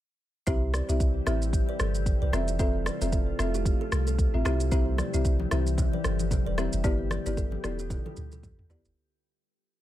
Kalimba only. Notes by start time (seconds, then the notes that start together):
0.47 G4 C5
0.74 B4 D5
1.27 C5 E5
1.69 B4 D5
1.80 A4 C5
2.22 B4 D5
2.33 C5 E5
2.59 A4 C5
2.86 B4 D5
3.01 A4 C5
3.13 F4 A4
3.39 F4 A4
3.55 E4 G4
3.81 F4 A4
4.08 F4 A4
4.45 G4 C5
4.72 G4 C5
4.98 B4 D5
5.51 C5 E5
5.94 B4 D5
6.04 A4 C5
6.46 B4 D5
6.58 C5 E5
6.84 G4 B4
7.11 B4 D5
7.26 G4 B4
7.37 E4 A4
7.64 F4 A4
7.80 E4 G4
8.06 F4 A4
8.33 F4 A4
8.70 G4 B4